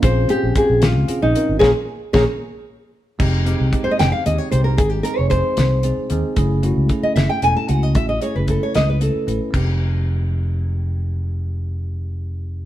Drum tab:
CC |------|------|x-----|------|
HH |xxxxxx|------|-xxxxx|xxxxxx|
SD |---o--|o-o---|---o--|---o--|
BD |o-o---|o-o---|o-o---|o-o---|

CC |------|------|x-----|------|
HH |xxxxxx|xxxxxx|------|------|
SD |---o--|---o--|------|------|
BD |o-o---|o-o---|o-----|------|